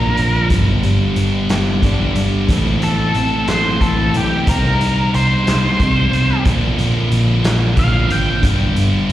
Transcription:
Already playing: A#1 A#2 D3 F3 A#3 D4 A#4
0.17 A#1 F3, closed hi-hat
0.50 G1 G2 D3 G3 B3 D4, kick, closed hi-hat
0.83 G1 G3, closed hi-hat
1.16 G1 B3, closed hi-hat
1.49 G1 G4, snare, closed hi-hat
1.82 G1 G2 D3 G3 B3 D4, kick, closed hi-hat
2.15 G1 G3, closed hi-hat
2.48 A1 A2 E3 A3 C4 E4, kick, closed hi-hat
2.81 A1 E3 A4, closed hi-hat
3.14 A1 C4, closed hi-hat
3.48 A1 A4 C5, snare, closed hi-hat
3.80 A1 A2 E3 A3 C4 E4 A4, kick, closed hi-hat
4.14 B1 E3 G4, closed hi-hat
4.47 C2 C3 G3 C4 D#4 A#4, kick, closed hi-hat
4.81 C2, closed hi-hat
5.14 C2 C5, closed hi-hat
5.47 C2, snare, closed hi-hat
5.79 C2 C3 G3 C4 D#4, kick, closed hi-hat
6.13 C2, closed hi-hat
6.45 A#1 A#2 D3 F3 A#3 D4, kick, closed hi-hat
6.78 A#1, closed hi-hat
7.12 A#1, closed hi-hat
7.44 A#1, snare, closed hi-hat
7.77 A#1 A#2 D3 F3 A#3 D4 F5, kick, closed hi-hat
8.10 G#1 G5, closed hi-hat
8.42 G1 G2 D3 G3 B3 D4, kick, closed hi-hat
8.76 G1, closed hi-hat
9.09 G1

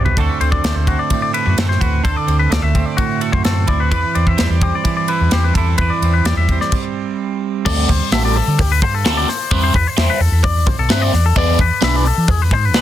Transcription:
Already playing: B1 C3 B3 D4 F#4 A4
0.05 B4, floor tom
0.17 D2 D3 A3 C4 F#4 A4, kick, ride
0.40 D2 C4 C5, ride
0.52 D5, kick
0.64 D2 A3, snare, ride
0.76 D2 C5
0.87 C4 F#4, kick, ride
0.99 D5
1.10 A2, kick, ride
1.22 D5
1.33 E4 B4, ride
1.46 F#2 F#4
1.57 F#2 C4 A4, snare, ride
1.69 C5, snare
1.81 D2 F#4 B4, kick, ride
2.03 D2 D3 A4 C5, kick, ride
2.16 D5
2.27 D2 C4, ride
2.39 B4
2.50 D2 A3 D5, snare, ride
2.62 D2 E5
2.75 C4, kick, ride
2.86 D5
2.97 A2 F#4, kick, ride
3.21 F#4 A4, ride
3.32 F#2 C5, kick
3.44 F#2 C4 A4, snare, ride
3.67 D2 E4 D5, kick, ride
3.80 F#4 B4
3.91 E2 E3 B4, kick, ride
4.15 E2 C4 D5, ride
4.27 E5, kick
4.37 E2 G3, snare, ride
4.50 E2 D5
4.61 C4 G4, kick, ride
4.75 D5
4.84 E3, kick, ride
4.97 D5
5.08 E4 B4, ride
5.21 E2
5.31 E2 C4 G4, snare, ride
5.44 B4
5.54 E2 E4 A4, kick, ride
5.78 E2 E3 B4, kick, ride
5.90 D5
6.02 E2 C4, ride
6.13 B4
6.24 E2 G3 D5, snare, ride
6.36 E2 E5
6.49 C4, kick, ride
6.61 D5, snare
6.72 kick, crash
7.66 D2 A3 C4 F#4 A4 D5, kick, crash
7.89 D2 C5, muted overdriven electric guitar stroke, kick, open hi-hat
8.11 A1 A3 C4 F#4 A4 E5, snare, open hi-hat
8.25 D5
8.36 A4, muted overdriven electric guitar stroke, open hi-hat
8.47 D3
8.59 D2 G4, muted overdriven electric guitar stroke, kick, open hi-hat
8.72 B4
8.82 G2 C5, muted overdriven electric guitar stroke, kick, open hi-hat
8.95 A4
9.05 D2 A3 C4 F#4 A4, snare, open hi-hat
9.17 D5
9.28 C5, muted overdriven electric guitar stroke, snare, open hi-hat
9.51 E2 G3 C4 E4 B4 C5, kick, open hi-hat
9.64 C5
9.74 E2 B4, muted overdriven electric guitar stroke, kick, open hi-hat
9.87 C5
9.97 E2 G3 C4 E4 C5, snare, open hi-hat
10.10 B4
10.20 E2 A4, muted overdriven electric guitar stroke, open hi-hat
10.32 E2
10.43 D5, muted overdriven electric guitar stroke, kick, open hi-hat
10.67 B1 C5, muted overdriven electric guitar stroke, kick, open hi-hat
10.78 B1 A4
10.89 G2 G3 C4 E4 B4 C5, snare
11.02 D5
11.13 E2, muted overdriven electric guitar stroke, snare, open hi-hat
11.26 A4
11.36 E2 B3 D4 G#4 B4 D5, kick, open hi-hat
11.58 E2 B4, muted overdriven electric guitar stroke, kick, open hi-hat
11.82 B1 B3 D4 G#4 B4 E5, snare, open hi-hat
11.96 D5
12.05 A4, muted overdriven electric guitar stroke, open hi-hat
12.17 E3
12.28 E2 G#4, muted overdriven electric guitar stroke, kick, open hi-hat
12.42 B4
12.51 G#2 C5, muted overdriven electric guitar stroke, kick, open hi-hat
12.65 B4
12.74 B1 B3 D4 G#4 B4, snare, open hi-hat

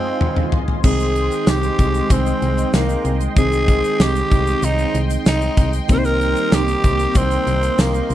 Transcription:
Already playing: G#3 C4 D#4 F4 D#5 G#5 C6
0.21 mid tom
0.36 mid tom
0.52 floor tom
0.68 floor tom
0.83 C2 D#3 G#3 C4 D#4 G#4 D#5 G5 C6, kick, crash, shaker
1.00 closed hi-hat, shaker
1.16 closed hi-hat
1.31 closed hi-hat, shaker
1.47 C2 G4, snare, tambourine, shaker
1.63 closed hi-hat, shaker
1.79 C2, kick, closed hi-hat
1.94 closed hi-hat, shaker
2.10 C2 C4, kick, closed hi-hat, shaker
2.26 closed hi-hat, shaker
2.42 C2, closed hi-hat
2.58 closed hi-hat, shaker
2.73 C2 A#3, snare, tambourine, shaker
2.89 closed hi-hat, shaker
3.05 C2, closed hi-hat, shaker
3.21 closed hi-hat, shaker
3.35 C2 D#3 G#3 C4 D#4 G#4, kick, closed hi-hat, shaker
3.52 closed hi-hat, shaker
3.68 kick, closed hi-hat
3.84 closed hi-hat, shaker
4.00 C2 G4, snare, tambourine, shaker
4.15 closed hi-hat, shaker
4.31 C2, kick, closed hi-hat
4.47 closed hi-hat, shaker
4.62 C2 D#4, closed hi-hat, shaker
4.79 closed hi-hat, shaker
4.94 C2, closed hi-hat
5.10 closed hi-hat, shaker
5.26 C2 D#4, snare, tambourine, shaker
5.41 closed hi-hat, shaker
5.57 C2, kick, closed hi-hat, shaker
5.73 closed hi-hat, shaker
5.88 C2 D#3 G3 A#3 C4 D#4 A#4 D#5, kick, closed hi-hat, shaker
5.98 C5
6.05 A#4, closed hi-hat, shaker
6.21 closed hi-hat
6.36 closed hi-hat, shaker
6.52 C2 G4, snare, tambourine, shaker
6.68 closed hi-hat, shaker
6.84 C2, kick, closed hi-hat
6.99 closed hi-hat, shaker
7.15 C2 C4, kick, closed hi-hat, shaker
7.31 closed hi-hat, shaker
7.47 C2, closed hi-hat
7.63 closed hi-hat, shaker
7.78 C2 A#3, snare, tambourine, shaker
7.94 closed hi-hat, shaker
8.10 C2, closed hi-hat, shaker

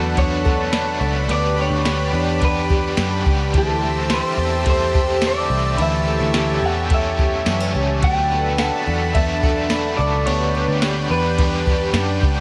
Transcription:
Already playing: E2 F#3 A3 B3 D4 F#4 A4 B4 F#5 B5 C#6
0.16 D3 A3 B3 C#5, kick, ride
0.20 B3 F#4
0.44 B3 F#4 A4, kick
0.50 A3
0.72 D3 A3 B3 D4 A5 B5, snare, ride, tambourine
0.77 F#4
1.00 C#2 B3 F#4 A4
1.06 A3
1.28 D2 D3 G3 B3 G4 B4 D5, ride
1.33 G4
1.56 B3 G4
1.61 G3 C#5
1.70 D2
1.84 D3 G3 B3 G4, snare, ride, tambourine
1.89 G4
2.12 E2 B3 D4 G4
2.18 G3
2.40 D3 G3 B3, kick, ride
2.44 B3 G4 B4
2.69 B3 G4, kick
2.75 G3
2.96 F#2 D3 G3 B3 D4, snare, ride, tambourine
3.01 G4
3.24 C#2 B3 G4, kick
3.30 G3
3.52 D2 D3 E3 G3 C4 E4 C5 E5 A5, kick, ride
3.57 A4
3.80 A3 E4 A4
3.85 C4
4.08 D3 G3 C4 E4 G4 C6, snare, ride, tambourine
4.12 A4 C5
4.36 E2 C4 E4 A4
4.42 C4
4.64 G3 A3 C4 E4, kick, ride
4.70 A4 C5
4.93 E4 G4 A4, kick
4.99 C4
5.21 D3 G3 C4 E4 A4, snare, ride, tambourine
5.27 D5
5.49 C2 E4 G4 A4
5.55 C4
5.77 D2 D3 E3 G3 C#4 G4 C#5 B5, ride
5.81 A4 E5
6.05 A3 C#4 A4
6.11 G3
6.20 D2
6.34 D3 E3 G3 C#4 G4, snare, ride, tambourine
6.38 A4
6.60 E2 C#4 A4
6.66 G3 F#5
6.88 E3 G3 A3 C#4, kick, ride
6.94 A4 E5
7.16 C#4 G4 A4, kick
7.22 G3
7.44 F#2 D3 E3 G3 B3 C#4, snare, ride, tambourine
7.49 A4
7.60 C#4
7.73 C#2 C#4 G4 A4
7.79 G3
8.01 D2 D3 F#3 A3 B3 D4 A4 G5 A5 B5, kick, ride
8.05 F#4
8.28 B3 F#4
8.34 A3
8.57 D3 F#3 A3 B3 F#4 A4 F#5 A5, snare, ride, tambourine
8.85 E2 B3 D4 F#4
8.90 A3
9.13 F#3 A3 B3 E5, kick, ride
9.17 B3 F#4
9.41 B3 F#4 A4, kick
9.47 A3
9.68 D3 F#3 A3 B3 D4 B5, snare, ride, tambourine
9.73 F#4
9.96 C#2 B3 F#4 A4 D5
10.02 A3
10.25 D2 D3 G3 B3 B4 C#5 G5, ride
10.29 G4
10.53 B3 G4
10.58 G3
10.68 D2
10.82 D3 G3 B3 G4, snare, ride, tambourine
11.09 E2 B3 D4 G4 B4
11.15 G3
11.37 D3 G3 B3 B5, kick, ride
11.41 B3 G4
11.66 B3 G4, kick
11.71 G3
11.93 F#2 D3 G3 B3 D4, snare, ride, tambourine
11.98 G4
12.21 C#2 B3 G4, kick
12.27 G3

